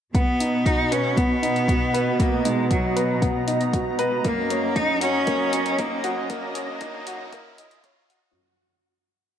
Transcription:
0.14 4.22 B2 medium
0.14 4.21 B3 medium
0.14 0.67 B3 medium
0.14 0.39 B3 medium
0.14 8.31 F#4 medium
0.14 4.21 D#5 medium
0.14 2.18 B5 medium
0.14 kick medium
0.14 closed hi-hat soft
0.14 riser medium
0.40 0.65 D#4 medium
0.40 closed hi-hat medium
0.66 0.93 D#4 loud
0.66 0.90 F#4 medium
0.66 kick medium
0.66 closed hi-hat soft
0.91 1.19 C#4 medium
0.91 1.16 B4 medium
0.91 closed hi-hat medium
1.17 2.21 B3 loud
1.17 1.32 B3 medium
1.17 kick medium
1.17 closed hi-hat soft
1.42 1.67 D#4 medium
1.42 closed hi-hat medium
1.56 closed hi-hat soft
1.68 1.83 F#4 medium
1.68 kick medium
1.68 closed hi-hat soft
1.94 2.09 B4 medium
1.94 closed hi-hat soft
2.20 2.46 A#3 medium
2.20 2.44 B3 medium
2.20 8.31 A#5 medium
2.20 kick medium
2.20 closed hi-hat soft
2.45 2.71 G#3 medium
2.45 2.70 D#4 medium
2.45 closed hi-hat medium
2.70 3.19 F#3 medium
2.70 2.95 F#4 medium
2.70 kick medium
2.70 closed hi-hat soft
2.96 3.21 B4 medium
2.96 closed hi-hat medium
3.22 3.37 B3 medium
3.22 kick loud
3.22 closed hi-hat soft
3.47 3.72 D#4 medium
3.47 closed hi-hat medium
3.61 closed hi-hat soft
3.73 3.88 F#4 medium
3.73 kick loud
3.73 closed hi-hat soft
3.99 4.14 B4 medium
3.99 closed hi-hat medium
4.24 8.32 F#2 medium
4.24 4.49 A#3 medium
4.24 4.77 A#3 medium
4.24 8.31 C#4 medium
4.24 8.31 D#5 medium
4.24 kick loud
4.24 closed hi-hat soft
4.50 4.75 C#4 medium
4.50 closed hi-hat medium
4.76 5.01 D#4 loud
4.76 5.00 D#4 medium
4.76 kick loud
4.76 closed hi-hat soft
5.01 5.80 C#4 loud
5.01 5.26 F#4 medium
5.01 closed hi-hat medium
5.27 5.42 A#3 medium
5.27 kick loud
5.27 closed hi-hat soft
5.52 5.77 C#4 medium
5.52 closed hi-hat medium
5.66 closed hi-hat soft
5.78 6.29 A#3 medium
5.78 5.93 D#4 medium
5.78 kick loud
5.78 closed hi-hat soft
6.04 6.19 F#4 loud
6.04 closed hi-hat medium
6.30 7.80 A#3 medium
6.30 6.54 A#3 medium
6.30 kick loud
6.30 closed hi-hat soft
6.55 6.80 C#4 medium
6.55 closed hi-hat medium
6.81 7.06 D#4 medium
6.81 kick loud
6.81 closed hi-hat soft
7.07 7.31 F#4 medium
7.07 closed hi-hat medium
7.33 7.47 A#3 medium
7.33 kick loud
7.33 closed hi-hat soft
7.58 7.73 D#4 medium
7.58 closed hi-hat medium
7.71 closed hi-hat soft
7.84 8.08 C#4 medium
7.84 kick loud
7.84 closed hi-hat soft
8.10 8.34 F#4 medium
8.10 closed hi-hat medium

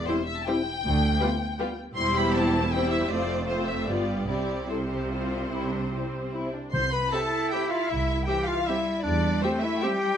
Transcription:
0.07 0.17 G3 soft
0.07 0.23 C4 soft
0.07 0.16 E4 soft
0.07 0.22 E4 soft
0.07 0.15 G4 soft
0.07 0.15 C5 soft
0.07 0.28 C5 medium
0.27 0.40 E5 medium
0.40 0.47 A5 soft
0.47 0.55 G3 soft
0.47 0.61 C4 soft
0.47 0.55 E4 soft
0.47 0.61 E4 soft
0.47 0.55 G4 soft
0.47 0.55 C5 soft
0.47 1.78 G5 medium
0.83 1.14 D2 medium
1.20 1.29 G3 soft
1.20 1.35 B3 medium
1.20 1.29 F4 soft
1.20 1.35 F4 medium
1.20 1.28 G4 soft
1.20 1.28 B4 soft
1.59 1.68 G3 soft
1.59 1.74 B3 medium
1.59 1.68 F4 soft
1.59 1.74 F4 soft
1.59 1.67 G4 soft
1.59 1.67 B4 soft
1.95 3.04 E1 soft
1.95 3.05 E2 medium
1.95 2.68 G3 medium
1.95 2.68 E4 soft
1.95 2.68 G4 medium
1.95 2.68 C5 medium
1.95 2.13 C6 medium
2.14 2.33 B5 medium
2.34 2.48 C4 soft
2.34 2.49 E4 soft
2.34 2.72 A5 medium
2.72 3.08 G3 soft
2.72 2.86 C4 soft
2.72 3.08 E4 soft
2.72 2.86 E4 soft
2.72 3.08 G4 soft
2.72 3.08 C5 soft
2.72 2.91 G5 medium
2.89 3.08 E5 medium
3.08 3.86 F1 soft
3.08 3.87 F2 medium
3.08 3.47 A3 soft
3.08 3.47 C4 soft
3.08 3.46 F4 soft
3.08 3.46 C5 soft
3.08 3.47 D5 medium
3.47 3.62 A3 soft
3.47 3.88 A3 soft
3.47 3.88 C4 soft
3.47 3.86 F4 soft
3.47 3.62 F4 soft
3.47 3.87 C5 soft
3.47 3.67 C5 soft
3.67 3.88 E5 soft
3.87 4.28 G1 soft
3.87 4.28 G2 soft
3.87 4.27 G3 soft
3.87 4.03 B3 soft
3.87 4.28 B3 soft
3.87 4.27 F4 soft
3.87 4.03 F4 soft
3.87 4.27 G4 soft
3.87 4.26 D5 soft
4.27 6.54 C2 soft
4.27 6.54 C3 soft
4.27 4.68 G3 soft
4.27 4.68 C4 soft
4.27 4.68 E4 soft
4.27 4.68 G4 soft
4.27 4.67 D5 soft
4.68 6.51 G3 soft
4.68 4.84 C4 soft
4.68 6.51 C4 soft
4.68 4.84 E4 soft
4.68 4.77 A4 soft
4.68 6.33 C5 soft
4.89 5.10 G4 soft
5.11 5.27 C4 soft
5.11 5.27 E4 soft
5.11 5.50 F4 soft
5.51 5.70 E4 soft
5.70 5.91 D4 soft
5.90 6.32 C4 soft
5.90 6.08 C4 soft
5.90 6.08 E4 soft
6.34 6.49 C4 soft
6.34 6.54 E4 soft
6.34 6.49 E4 soft
6.54 6.73 D4 soft
6.72 7.05 C2 medium
6.72 7.28 C3 medium
6.72 6.91 C5 medium
6.72 6.90 C6 medium
6.92 7.11 B4 medium
6.92 7.12 B5 medium
7.12 7.21 C4 soft
7.12 8.24 E4 soft
7.12 7.21 G4 soft
7.12 7.54 A4 medium
7.12 7.21 E5 soft
7.12 7.52 A5 medium
7.51 7.61 C4 soft
7.51 7.73 G4 medium
7.51 7.61 G4 soft
7.51 7.62 E5 soft
7.51 7.71 G5 medium
7.71 7.91 F4 medium
7.71 7.89 F5 medium
7.87 8.21 C2 medium
7.87 8.26 E4 medium
7.87 8.26 E5 medium
8.26 8.67 E3 soft
8.26 8.36 C4 soft
8.26 8.49 G4 medium
8.26 8.36 G4 soft
8.26 8.36 E5 soft
8.26 8.46 G5 medium
8.46 8.68 F4 medium
8.46 8.66 F5 medium
8.66 9.04 G3 medium
8.66 8.76 C4 soft
8.66 9.05 E4 medium
8.66 8.76 G4 soft
8.66 9.04 E5 medium
8.66 8.76 E5 soft
9.03 9.36 E2 medium
9.03 9.42 G3 medium
9.03 9.42 D4 medium
9.03 9.41 D5 medium
9.41 9.82 A3 medium
9.41 9.51 C4 medium
9.41 9.65 C4 medium
9.41 9.51 G4 soft
9.41 9.61 C5 medium
9.41 9.51 E5 soft
9.62 9.84 E4 medium
9.62 9.81 E5 medium
9.81 10.17 G3 medium
9.81 9.91 C4 soft
9.81 9.91 G4 soft
9.81 10.17 G4 medium
9.81 9.90 E5 medium
9.81 10.17 G5 medium

